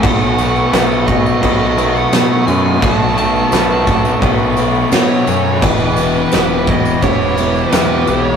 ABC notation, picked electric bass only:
X:1
M:4/4
L:1/8
Q:1/4=86
K:Bmix
V:1 name="Picked electric bass" clef=bass
B,,,2 B,,,2 B,,,2 B,, F,, | B,,,2 B,,,2 B,,,2 B,, F,, | E,,,2 E,,,2 E,,,2 E,, B,,, |]